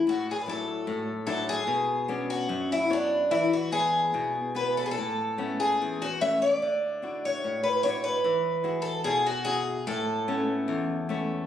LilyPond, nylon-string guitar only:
\new Staff \with { instrumentName = "Nylon-string guitar" } { \time 2/4 \key a \major \tempo 4 = 73 a,8 <fis d' e'>8 a,8 <fis d' e'>8 | b,8 <b cis' d'>8 fis,8 <b d' cis''>8 | e8 <b e' gis'>8 b,8 <b e' gis'>8 | a,8 <a b cis'>8 e,8 <a b cis'>8 |
d8 <d' e' fis'>8 a,8 <d' e' fis'>8 | e8 <e' fis' gis'>8 b,8 <e' fis' gis'>8 | a,8 <a b cis'>8 e,8 <a b cis'>8 | }